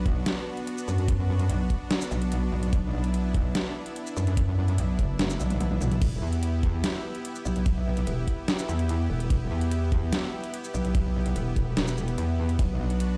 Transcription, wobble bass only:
0.00 0.25 B1 medium
0.88 1.48 F#2 loud
1.50 1.68 B1 medium
2.11 2.51 B1 loud
2.52 2.71 B1 loud
2.73 2.92 B1 loud
2.93 3.53 B1 loud
4.17 4.77 F#2 loud
4.78 4.97 B1 medium
4.99 5.38 F#1 loud
5.40 5.59 B1 medium
5.60 5.79 B1 loud
5.81 6.00 B1 loud
6.02 6.21 E1 loud
6.22 6.82 E2 loud
7.45 8.05 B1 loud
8.07 8.26 E1 loud
8.69 9.08 E2 loud
9.10 9.29 E1 loud
9.30 9.49 E1 loud
9.51 10.11 E2 loud
10.74 11.34 B1 loud
11.36 11.55 E1 loud
11.56 11.75 E1 medium
11.77 12.16 E1 medium
12.18 12.58 E2 loud
12.59 12.78 B1 loud
12.80 13.17 B1 loud

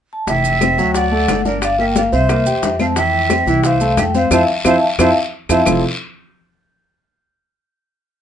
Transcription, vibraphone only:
0.13 0.28 A5 medium
0.30 0.98 G5 medium
0.97 1.43 F#5 loud
1.47 1.62 D5 medium
1.64 1.79 F5 medium
1.81 1.88 G5 loud
1.97 2.04 F5 medium
2.14 2.76 E5 medium
2.81 2.89 A5 medium
2.98 3.61 G5 loud
3.65 3.99 F5 medium
3.99 4.06 G5 medium
4.16 4.31 F5 medium
4.32 4.43 E5 medium
4.32 4.43 F5 medium
4.32 4.43 A5 medium
4.67 4.77 E5 loud
4.67 4.77 F5 medium
4.67 4.77 A5 loud
5.00 5.11 E5 medium
5.00 5.11 F5 medium
5.00 5.11 A5 medium
5.51 5.61 E5 medium
5.51 5.61 F5 medium
5.51 5.61 A5 medium

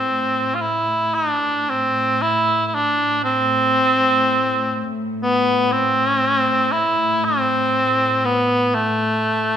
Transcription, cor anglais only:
0.00 0.56 C4 medium
0.55 0.63 F4 medium
0.61 1.16 E4 medium
1.14 1.71 D4 medium
1.69 2.23 C4 medium
2.22 2.67 E4 medium
2.67 2.76 E4 medium
2.74 3.23 D4 medium
3.24 4.93 C4 medium
5.22 5.73 B3 medium
5.72 6.73 C4 medium
6.72 7.26 E4 medium
7.25 8.27 C4 medium
8.25 8.76 B3 medium
8.75 9.57 A3 medium

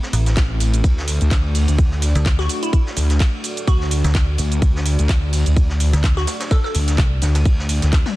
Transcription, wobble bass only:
0.37 0.82 A1 medium
0.84 1.19 D2 loud
1.21 1.30 D2 loud
1.31 1.66 D2 loud
1.68 2.13 D2 loud
2.97 3.19 D2 loud
3.68 4.02 D2 medium
4.38 4.60 D2 loud
4.62 4.97 D2 loud
4.99 5.08 D2 loud
5.09 5.44 D2 loud
5.46 5.91 D2 loud
6.75 6.97 D2 loud
7.22 7.44 D2 loud
7.45 7.80 D2 loud
7.82 8.04 D2 loud

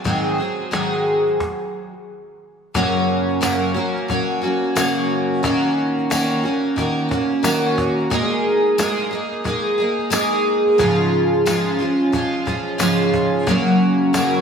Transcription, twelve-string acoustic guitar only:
0.04 0.38 G#2 medium
0.04 0.39 D#3 medium
0.04 0.39 F#3 medium
0.04 0.39 G#3 medium
0.04 0.39 C4 medium
0.04 0.37 G#4 medium
0.38 0.71 F#3 soft
0.38 0.71 G#3 soft
0.38 0.72 C4 soft
0.38 0.72 G#4 soft
0.71 1.39 G#2 medium
0.71 1.40 D#3 medium
0.71 1.90 F#3 medium
0.71 1.40 G#3 medium
0.71 1.40 C4 medium
0.71 1.40 G#4 medium
2.74 3.39 F#2 medium
2.74 3.40 C#3 medium
2.74 3.41 F#3 medium
2.74 3.41 A#3 loud
2.74 3.42 C#4 medium
2.74 3.42 F#4 loud
3.41 3.75 F#2 medium
3.41 3.75 C#3 medium
3.41 3.75 F#3 medium
3.41 3.75 A#3 medium
3.41 3.75 C#4 medium
3.41 3.73 F#4 medium
3.74 4.07 F#3 soft
3.74 4.09 A#3 medium
3.74 4.09 C#4 medium
3.74 4.09 F#4 medium
4.08 4.42 F#3 medium
4.08 4.43 A#3 medium
4.08 4.42 C#4 medium
4.08 4.40 F#4 medium
4.42 4.75 F#3 soft
4.42 4.76 A#3 soft
4.42 4.76 C#4 soft
4.42 4.76 F#4 medium
4.75 5.43 F#2 medium
4.75 5.44 C#3 medium
4.75 5.42 F#3 medium
4.75 5.43 A#3 medium
4.75 5.44 C#4 loud
4.75 5.45 F#4 loud
5.43 6.10 D#3 loud
5.43 6.10 A#3 medium
5.43 6.10 C#4 medium
5.43 6.11 F#4 loud
6.10 6.44 D#3 medium
6.10 6.44 A#3 medium
6.10 6.44 C#4 medium
6.10 6.42 F#4 medium
6.43 6.77 A#3 soft
6.43 6.77 C#4 medium
6.43 6.77 F#4 medium
6.76 7.11 D#3 medium
6.76 7.11 A#3 medium
6.76 7.10 C#4 medium
6.76 7.08 F#4 medium
7.09 7.43 A#3 soft
7.09 7.44 C#4 medium
7.09 7.44 F#4 medium
7.43 8.10 D#3 medium
7.43 8.11 A#3 loud
7.43 8.11 C#4 loud
7.43 8.12 F#4 loud
8.10 8.78 G#3 medium
8.10 8.78 A#3 loud
8.10 8.79 D#4 loud
8.10 8.80 G#4 medium
8.78 9.12 G#3 medium
8.78 9.13 A#3 medium
8.78 9.11 D#4 medium
8.78 9.10 G#4 medium
9.11 9.44 A#3 soft
9.11 9.46 D#4 medium
9.11 9.45 G#4 medium
9.44 9.79 G#3 medium
9.44 9.79 A#3 medium
9.44 9.78 D#4 medium
9.44 9.77 G#4 medium
9.78 10.10 A#3 medium
9.78 10.12 D#4 medium
9.78 10.12 G#4 medium
10.10 10.79 G#3 loud
10.10 10.79 A#3 loud
10.10 10.80 D#4 medium
10.10 10.81 G#4 loud
10.78 11.44 G#2 medium
10.78 11.45 C#3 medium
10.78 11.45 F3 medium
10.78 11.46 G#3 medium
10.78 11.47 C#4 medium
10.78 11.47 F4 medium
11.46 11.80 G#2 medium
11.46 11.80 C#3 medium
11.46 11.80 F3 medium
11.46 11.80 G#3 medium
11.46 11.79 C#4 medium
11.46 11.78 F4 medium
11.79 12.11 F3 soft
11.79 12.12 G#3 soft
11.79 12.13 C#4 medium
11.79 12.13 F4 medium
12.12 12.46 F3 medium
12.12 12.46 G#3 medium
12.12 12.45 C#4 medium
12.12 12.44 F4 medium
12.45 12.78 F3 soft
12.45 12.78 G#3 soft
12.45 12.79 C#4 medium
12.45 12.79 F4 medium
12.78 13.46 G#2 medium
12.78 13.46 C#3 medium
12.78 13.47 F3 loud
12.78 13.47 G#3 medium
12.78 13.48 C#4 loud
12.78 13.47 F4 loud
13.46 14.12 F#2 medium
13.46 14.13 C#3 medium
13.46 14.14 F#3 medium
13.46 14.14 A#3 medium
13.46 14.15 C#4 loud
13.46 14.15 F#4 medium
14.13 14.41 F#2 medium
14.13 14.41 C#3 medium
14.13 14.41 F#3 medium
14.13 14.41 A#3 medium
14.13 14.41 C#4 medium
14.13 14.41 F#4 medium

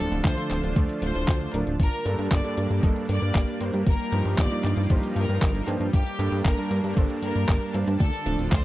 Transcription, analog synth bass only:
0.12 0.22 D1 loud
0.25 0.35 D2 medium
0.50 0.60 D1 medium
0.63 0.73 D1 medium
0.76 0.86 D2 loud
1.02 1.12 D1 loud
1.15 1.25 D1 medium
1.28 1.48 D2 medium
1.54 1.64 D1 medium
1.67 1.77 D1 medium
1.80 1.90 G1 loud
2.06 2.16 G2 loud
2.19 2.29 G2 loud
2.31 2.42 G1 loud
2.57 2.67 G2 medium
2.70 2.80 G2 loud
2.83 2.93 G1 medium
3.09 3.19 G2 medium
3.22 3.32 G2 medium
3.35 3.45 G1 loud
3.61 3.71 G2 medium
3.74 3.84 G2 medium
3.87 3.97 G1 loud
4.12 4.23 G2 loud
4.25 4.36 G2 loud
4.38 4.48 G1 loud
4.64 4.74 G2 medium
4.77 4.87 G2 loud
4.90 5.00 G1 loud
5.16 5.26 G2 medium
5.29 5.39 G2 medium
5.42 5.62 G1 loud
5.67 5.78 G2 loud
5.80 5.91 G2 medium
5.93 6.04 G1 loud
6.19 6.29 G2 loud
6.32 6.42 G2 loud
6.45 6.55 G1 loud
6.71 6.81 G2 medium
6.84 6.94 G2 medium
6.97 7.07 G1 medium
7.22 7.33 G2 medium
7.36 7.46 G2 medium
7.49 7.59 G1 loud
7.74 7.85 G2 loud
7.87 7.98 G2 medium
8.00 8.11 D2 loud
8.26 8.36 D1 loud
8.39 8.49 D1 loud
8.52 8.62 D2 loud

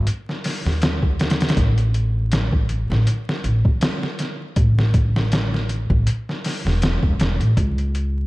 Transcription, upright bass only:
0.65 1.54 D#2 medium
1.57 2.86 A1 medium
2.90 3.05 A1 medium
3.44 3.62 A1 medium
4.57 5.86 A1 medium
5.90 6.05 A1 medium
6.65 7.02 E1 medium
7.03 7.17 E1 medium
7.19 7.38 E1 medium
7.40 7.55 A1 medium
7.57 8.27 C#2 medium

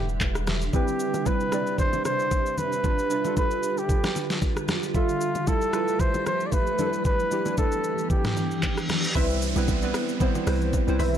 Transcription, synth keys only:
0.00 0.73 G3 medium
0.00 0.76 D4 medium
0.00 0.74 E4 medium
0.00 0.75 A4 medium
0.00 0.75 B4 medium
0.73 1.16 G3 medium
0.73 1.17 C4 medium
0.73 1.17 E4 medium
0.73 1.18 B4 medium
1.25 1.47 G3 medium
1.25 1.48 C4 medium
1.25 1.48 E4 medium
1.25 1.48 B4 medium
1.52 2.37 G3 medium
1.52 2.37 C4 medium
1.52 2.38 E4 medium
1.52 2.38 D5 medium
2.84 3.05 G3 medium
2.84 3.06 D4 medium
2.84 3.06 F4 medium
2.84 3.07 B4 medium
3.10 3.22 G3 medium
3.10 3.22 D4 medium
3.10 3.22 F4 medium
3.10 3.23 B4 medium
3.25 4.08 G3 medium
3.25 4.09 D4 medium
3.25 4.09 F4 medium
3.25 4.09 A4 medium
4.94 5.38 G3 medium
4.94 5.38 F4 medium
4.94 5.39 A4 medium
4.94 5.38 E5 medium
5.47 5.69 G3 medium
5.47 5.69 E4 medium
5.47 5.69 F4 medium
5.47 5.70 A4 medium
5.73 6.58 G3 medium
5.73 6.58 E4 medium
5.73 6.59 F4 medium
5.73 6.59 B4 medium
6.78 7.22 G3 medium
6.78 7.22 D4 medium
6.78 7.22 E4 medium
6.78 6.87 A4 medium
6.87 7.26 B4 medium
7.31 7.43 G3 medium
7.31 7.43 D4 medium
7.31 7.44 E4 medium
7.31 7.44 G4 medium
7.46 8.29 G3 medium
7.46 8.30 D4 medium
7.46 8.30 E4 medium
7.46 8.31 B4 medium
9.15 9.47 G3 medium
9.15 9.48 C4 medium
9.15 9.48 E4 medium
9.15 9.48 B4 loud
9.56 9.77 G3 medium
9.56 9.77 B3 medium
9.56 9.77 C4 medium
9.56 9.77 E4 medium
9.56 9.78 B4 loud
9.82 10.14 G3 medium
9.82 10.14 B3 medium
9.82 10.14 C4 medium
9.82 10.14 E4 medium
9.82 10.15 B4 loud
10.20 10.42 G3 medium
10.20 10.42 B3 medium
10.20 10.43 C4 medium
10.20 10.43 E4 medium
10.20 10.43 C5 loud
10.46 10.79 G3 medium
10.46 10.79 C4 medium
10.46 10.80 E4 medium
10.46 10.79 B4 medium
10.46 10.80 C5 loud
10.87 11.18 G3 medium
10.87 11.18 C4 medium
10.87 11.18 E4 medium
10.87 11.18 B4 medium
10.87 11.18 C5 loud

